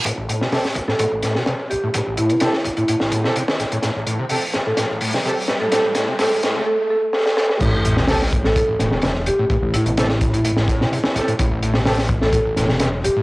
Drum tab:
CC |----------------|----------------|----------------|----------------|
HH |x-x-o-x-x-x-x-x-|x-xxx-xxx-x-x-xx|x-x-o-x-x-o-o-x-|x-x-o-x---------|
SD |---ooo-o--ooo---|----oo---o-o-oo-|o-----o-o--o--o-|o-o-o-o-----oooo|
BD |o-----o-o-------|o-----o---o-----|----------------|----------------|

CC |x---------------|----------------|----------------|
HH |x-x-o-x-x-x-x-x-|x-xxx-xxx-x-x-xx|x-x-o-x-x-x-x-x-|
SD |---ooo-o--ooo---|----oo---o-o-oo-|---ooo-o--ooo---|
BD |o-----o-o-------|o-----o---o-----|o-----o-o-------|